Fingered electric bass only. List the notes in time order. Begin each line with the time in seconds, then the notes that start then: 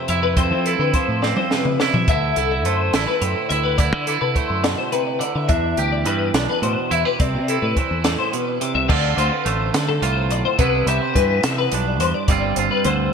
0.09 F2
0.51 F3
0.79 D3
1.08 A2
1.94 F3
2.08 D2
2.37 C2
2.65 F#2
2.93 A1
3.22 F#2
3.50 D2
3.93 D3
4.22 C3
4.50 F#2
5.35 D3
5.49 E2
5.78 D2
6.06 G2
6.34 B1
6.62 A2
6.91 E2
7.20 C2
7.34 C3
7.62 A2
7.91 E2
8.75 C2
8.89 D2
9.17 D2
9.46 A1
9.74 D3
10.02 C2
10.31 B1
10.59 C2
10.86 C2
11.15 G2
11.44 C3
11.72 B1
12.00 E2
12.28 G1
12.57 G1
12.85 D2